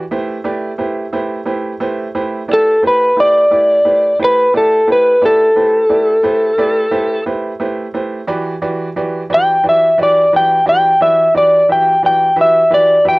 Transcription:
0.11 upright piano A3 E4 G4 B4 C5
0.44 upright piano A3 E4 G4 B4 D5
0.78 upright piano A3 E4 G4 B4 C5
1.13 upright piano A3 E4 G4 B4 C5
1.46 upright piano A3 E4 G4 B4 C5
1.80 upright piano A3 E4 G4 B4 C5
2.15 upright piano A3 E4 G4 B4 C5
2.48 upright piano A3 E4 G4 B4 D5
2.53 electric slide guitar A4
2.83 upright piano A3 E4 G4 B4 C5
2.87 electric slide guitar B4
3.17 upright piano A3 E4 G4 B4 C5, electric slide guitar D5
3.51 upright piano A3 E4 G4 B4 D5
3.85 upright piano A3 E4 G4 B4 C5
4.19 upright piano A3 E4 G4 B4 C5
4.24 electric slide guitar B4
4.54 upright piano A3 E4 G4 B4 D5, electric slide guitar A4
4.87 upright piano A3 E4 G4 B4 C5
4.92 electric slide guitar B4
5.21 upright piano A3 E4 G4 B4 D5
5.25 electric slide guitar A4
5.56 upright piano A3 E4 G4 B4 C5
5.89 upright piano A3 E4 G4 B4 D5
6.23 upright piano A3 E4 G4 B4 C5
6.58 upright piano A3 E4 G4 B4 D5
6.91 upright piano A3 E4 G4 B4 C5
7.26 upright piano A3 E4 G4 B4 C5
7.60 upright piano A3 E4 G4 B4 C5
7.94 upright piano A3 E4 G4 B4 C5
8.27 upright piano E3 F#4 G4 B4 D5
8.62 upright piano E3 F#4 G4 B4 D5
8.96 upright piano E3 F#4 G4 B4 D5
9.30 upright piano E3 F#4 G4 B4 D5
9.34 electric slide guitar G5
9.64 upright piano E3 F#4 G4 B4 D5
9.69 electric slide guitar E5
9.98 upright piano E3 F#4 G4 B4 D5
10.03 electric slide guitar D5
10.33 upright piano E3 F#4 G4 B4 D5, electric slide guitar G5
10.66 upright piano E3 F#4 G4 B4 D5, electric slide guitar G5
11.01 upright piano E3 F#4 G4 B4 D5, electric slide guitar E5
11.35 upright piano E3 F#4 G4 B4 D5, electric slide guitar D5
11.68 upright piano E3 F#4 G4 B4 E5, electric slide guitar G5
12.03 upright piano E3 F#4 G4 B4 D5, electric slide guitar G5
12.36 upright piano E3 F#4 G4 B4 E5
12.41 electric slide guitar E5
12.70 upright piano E3 F#4 G4 B4 E5, electric slide guitar D5
13.05 upright piano E3 F#4 G4 B4 E5, electric slide guitar G5

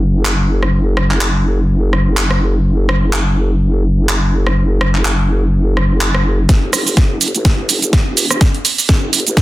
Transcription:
Already playing: wobble bass F#1
0.25 clap
0.63 cross-stick
0.97 cross-stick
1.11 clap
1.21 clap
1.93 cross-stick
2.17 clap
2.31 cross-stick
2.89 cross-stick
3.13 clap
4.09 clap
4.47 cross-stick
4.81 cross-stick
4.95 clap
5.05 clap
5.77 cross-stick
6.01 clap
6.14 cross-stick
6.49 wobble bass F#1, kick, snare, closed hi-hat, shaker
6.73 wobble bass F#1, cross-stick, open hi-hat, shaker
6.87 open hi-hat, shaker
6.97 wobble bass F#1, kick, snare, closed hi-hat, shaker
7.21 open hi-hat, shaker
7.28 closed hi-hat
7.34 wobble bass A1, closed hi-hat, shaker
7.45 kick, snare, closed hi-hat, shaker
7.69 wobble bass F#1, open hi-hat, shaker
7.82 closed hi-hat, shaker
7.93 kick, snare, closed hi-hat, shaker
8.06 wobble bass E1
8.17 open hi-hat, shaker
8.31 cross-stick, closed hi-hat, shaker
8.41 kick, snare, closed hi-hat, shaker
8.54 closed hi-hat
8.65 open hi-hat, shaker
8.78 open hi-hat, shaker
8.89 wobble bass F#1, kick, snare, closed hi-hat, shaker
9.13 open hi-hat, shaker
9.20 closed hi-hat
9.26 wobble bass A1, closed hi-hat, shaker
9.37 kick, snare, closed hi-hat, shaker

